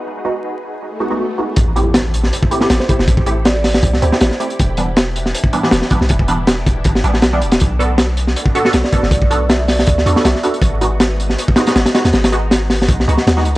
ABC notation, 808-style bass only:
X:1
M:4/4
L:1/16
Q:"Swing 16ths" 1/4=159
K:Ador
V:1 name="808-style bass" clef=bass
z16 | A,,,8 z4 A,,, z2 E,,, | A,,,8 C,,2 D,, z A,,, z3 | E,,,8 z4 E,,, z2 B,,, |
E,,,8 G,,,2 A,,,2 B,,,2 E,,,2 | B,,,8 z4 B,,, z2 F,,, | B,,,8 D,,2 E,, z B,,, z3 | ^G,,,8 z4 G,,, z2 ^D,, |
^G,,,8 B,,,2 ^C,, z ^D,,2 C,, z |]